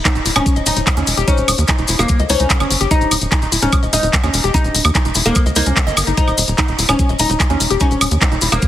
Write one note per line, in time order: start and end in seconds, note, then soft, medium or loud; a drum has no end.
0.05 0.14 D#4 loud
0.05 kick loud
0.05 clap loud
0.05 closed hi-hat medium
0.05 maracas soft
0.15 0.22 D#1 medium
0.15 0.19 D#4 medium
0.15 closed hi-hat soft
0.15 maracas soft
0.25 0.32 D#1 loud
0.25 0.31 E4 medium
0.25 open hi-hat loud
0.25 maracas medium
0.35 0.42 D#1 medium
0.35 0.54 C#4 loud
0.35 0.39 D#4 medium
0.35 closed hi-hat medium
0.35 high woodblock medium
0.35 maracas soft
0.46 kick loud
0.46 closed hi-hat medium
0.46 maracas medium
0.56 0.63 D#1 medium
0.56 0.65 D#5 medium
0.56 closed hi-hat soft
0.56 maracas soft
0.66 0.73 D#1 loud
0.66 0.70 D#4 medium
0.66 1.19 D#4 medium
0.66 open hi-hat loud
0.66 maracas loud
0.76 0.83 D#1 medium
0.76 0.80 D#4 medium
0.76 closed hi-hat medium
0.76 maracas soft
0.87 kick loud
0.87 clap loud
0.87 closed hi-hat medium
0.87 high woodblock soft
0.87 maracas medium
0.97 1.03 D#2 medium
0.97 1.03 C#4 loud
0.97 closed hi-hat soft
0.97 maracas soft
1.07 1.14 E1 medium
1.07 open hi-hat medium
1.07 maracas loud
1.17 1.24 E1 medium
1.17 1.26 G4 loud
1.17 closed hi-hat medium
1.17 maracas soft
1.28 1.52 C#4 medium
1.28 1.36 D#4 loud
1.28 kick loud
1.28 closed hi-hat medium
1.28 maracas medium
1.37 1.44 D#1 medium
1.37 closed hi-hat soft
1.37 maracas soft
1.48 1.54 D#1 loud
1.48 open hi-hat loud
1.48 high woodblock medium
1.48 maracas loud
1.58 1.65 D#2 medium
1.58 closed hi-hat medium
1.58 maracas soft
1.68 1.77 D#4 loud
1.68 kick loud
1.68 clap loud
1.68 closed hi-hat medium
1.68 maracas medium
1.78 1.85 E1 medium
1.78 1.82 D#4 medium
1.78 closed hi-hat soft
1.78 maracas soft
1.88 1.95 E1 loud
1.88 1.95 E4 medium
1.88 open hi-hat loud
1.88 maracas loud
1.99 2.05 E1 loud
1.99 2.17 A#3 loud
1.99 2.02 D#4 medium
1.99 closed hi-hat medium
1.99 high woodblock soft
1.99 maracas soft
2.08 kick loud
2.08 closed hi-hat medium
2.08 maracas soft
2.19 2.26 C#2 medium
2.19 2.28 D#5 medium
2.19 closed hi-hat soft
2.19 maracas soft
2.29 2.36 C#2 loud
2.29 2.83 C#4 medium
2.29 2.33 D#4 medium
2.29 open hi-hat loud
2.29 maracas medium
2.40 2.46 C#2 medium
2.40 2.43 D#4 medium
2.40 closed hi-hat medium
2.40 maracas soft
2.50 kick loud
2.50 clap loud
2.50 closed hi-hat medium
2.50 maracas medium
2.60 2.67 G1 medium
2.60 2.66 C#4 loud
2.60 closed hi-hat soft
2.60 high woodblock medium
2.60 maracas soft
2.70 2.77 G1 loud
2.70 open hi-hat loud
2.70 maracas loud
2.80 2.87 G1 medium
2.80 2.89 G4 loud
2.80 closed hi-hat medium
2.80 maracas soft
2.91 3.15 D#4 loud
2.91 2.99 D#4 loud
2.91 kick loud
2.91 closed hi-hat medium
2.91 maracas medium
3.01 3.07 D#1 medium
3.01 closed hi-hat soft
3.01 maracas soft
3.11 3.18 D#1 loud
3.11 open hi-hat loud
3.11 high woodblock soft
3.11 maracas loud
3.21 3.28 D#1 medium
3.21 closed hi-hat medium
3.21 maracas soft
3.32 3.40 D#4 loud
3.32 kick loud
3.32 clap loud
3.32 closed hi-hat medium
3.32 maracas soft
3.42 3.48 D#1 medium
3.42 3.45 D#4 medium
3.42 closed hi-hat soft
3.42 maracas soft
3.52 3.58 D#1 loud
3.52 3.58 E4 medium
3.52 open hi-hat loud
3.52 maracas medium
3.62 3.69 D#1 medium
3.62 3.80 C#4 medium
3.62 3.66 D#4 medium
3.62 closed hi-hat medium
3.62 maracas soft
3.72 kick loud
3.72 closed hi-hat medium
3.72 high woodblock medium
3.72 maracas medium
3.83 3.89 D#1 medium
3.83 3.91 D#5 medium
3.83 closed hi-hat soft
3.83 maracas soft
3.93 3.99 D#1 loud
3.93 3.96 D#4 medium
3.93 4.46 D#4 medium
3.93 open hi-hat loud
3.93 maracas loud
4.03 4.09 D#1 medium
4.03 4.07 D#4 medium
4.03 closed hi-hat medium
4.03 maracas soft
4.13 kick loud
4.13 clap loud
4.13 closed hi-hat medium
4.13 maracas medium
4.24 4.30 D#2 medium
4.24 4.29 C#4 loud
4.24 closed hi-hat soft
4.24 high woodblock soft
4.24 maracas soft
4.34 4.40 E1 loud
4.34 open hi-hat loud
4.34 maracas loud
4.44 4.50 E1 medium
4.44 4.53 G4 medium
4.44 closed hi-hat medium
4.44 maracas soft
4.54 4.63 D#4 loud
4.54 4.78 D#4 medium
4.54 kick loud
4.54 closed hi-hat medium
4.54 maracas medium
4.64 4.71 D#1 medium
4.64 closed hi-hat soft
4.64 maracas soft
4.75 4.81 D#1 loud
4.75 open hi-hat loud
4.75 maracas loud
4.85 4.91 D#2 medium
4.85 closed hi-hat medium
4.85 high woodblock medium
4.85 maracas soft
4.95 5.04 D#4 loud
4.95 kick loud
4.95 clap loud
4.95 closed hi-hat soft
4.95 maracas medium
5.05 5.12 E1 medium
5.05 5.09 D#4 medium
5.05 closed hi-hat soft
5.05 maracas soft
5.14 5.22 E1 loud
5.14 5.21 E4 medium
5.14 open hi-hat loud
5.14 maracas medium
5.25 5.32 E1 medium
5.25 5.44 A#3 loud
5.25 5.29 D#4 medium
5.25 closed hi-hat soft
5.25 maracas soft
5.35 kick loud
5.35 closed hi-hat soft
5.35 high woodblock soft
5.35 maracas medium
5.46 5.52 C#2 medium
5.46 5.55 D#5 medium
5.46 closed hi-hat soft
5.46 maracas soft
5.56 5.63 C#2 loud
5.56 6.09 A#3 medium
5.56 5.60 D#4 loud
5.56 open hi-hat loud
5.56 maracas medium
5.66 5.73 C#2 medium
5.66 5.72 C#4 medium
5.66 closed hi-hat soft
5.66 maracas soft
5.77 kick loud
5.77 clap loud
5.77 closed hi-hat soft
5.77 maracas medium
5.87 5.93 G1 medium
5.87 5.90 D#5 loud
5.87 closed hi-hat soft
5.87 maracas soft
5.97 6.03 G1 loud
5.97 open hi-hat loud
5.97 high woodblock medium
5.97 maracas loud
6.07 6.14 G1 medium
6.07 6.16 D#4 medium
6.07 closed hi-hat medium
6.07 maracas soft
6.17 6.42 D#4 loud
6.17 6.26 D#4 loud
6.17 kick loud
6.17 closed hi-hat medium
6.17 maracas medium
6.28 6.34 D#1 medium
6.28 closed hi-hat soft
6.28 high woodblock soft
6.28 maracas soft
6.38 6.44 D#1 loud
6.38 open hi-hat loud
6.38 maracas loud
6.48 6.54 D#1 medium
6.48 closed hi-hat soft
6.48 maracas soft
6.58 6.67 D#4 loud
6.58 kick loud
6.58 clap loud
6.58 closed hi-hat medium
6.58 maracas soft
6.68 6.75 D#1 medium
6.68 6.72 D#4 medium
6.68 closed hi-hat soft
6.68 maracas soft
6.79 6.85 D#1 loud
6.79 6.84 E4 medium
6.79 open hi-hat loud
6.79 maracas medium
6.89 6.95 D#1 medium
6.89 7.07 C#4 medium
6.89 6.92 D#4 medium
6.89 closed hi-hat medium
6.89 high woodblock medium
6.89 maracas soft
6.99 kick loud
6.99 closed hi-hat soft
6.99 maracas medium
7.09 7.16 D#1 medium
7.09 7.18 D#5 medium
7.09 closed hi-hat soft
7.09 maracas soft
7.19 7.26 D#1 loud
7.19 7.23 D#4 medium
7.19 7.73 D#4 medium
7.19 open hi-hat loud
7.19 maracas loud
7.30 7.36 D#1 medium
7.30 7.33 D#4 medium
7.30 closed hi-hat medium
7.30 maracas soft
7.40 kick loud
7.40 clap loud
7.40 closed hi-hat medium
7.40 high woodblock soft
7.40 maracas medium
7.50 7.56 D#2 medium
7.50 7.56 C#4 loud
7.50 closed hi-hat soft
7.50 maracas soft
7.60 7.67 E1 loud
7.60 open hi-hat medium
7.60 maracas medium
7.70 7.77 E1 medium
7.70 7.79 G4 loud
7.70 closed hi-hat medium
7.70 maracas soft
7.80 8.05 C#4 loud
7.80 7.89 D#4 loud
7.80 kick loud
7.80 closed hi-hat medium
7.80 maracas soft
7.91 7.97 D#1 medium
7.91 closed hi-hat soft
7.91 maracas soft
8.01 8.07 D#1 loud
8.01 open hi-hat loud
8.01 high woodblock medium
8.01 maracas medium
8.11 8.18 D#2 medium
8.11 closed hi-hat medium
8.11 maracas soft
8.21 8.30 D#4 loud
8.21 kick loud
8.21 clap loud
8.21 closed hi-hat medium
8.21 maracas soft
8.32 8.38 E1 medium
8.32 8.35 D#4 medium
8.32 closed hi-hat soft
8.32 maracas soft
8.41 8.48 E1 loud
8.41 8.48 E4 medium
8.41 open hi-hat medium
8.41 maracas medium
8.52 8.58 E1 loud
8.52 8.68 A#3 medium
8.52 8.56 D#4 medium
8.52 closed hi-hat medium
8.52 high woodblock soft
8.52 maracas soft
8.62 kick loud
8.62 closed hi-hat soft
8.62 maracas medium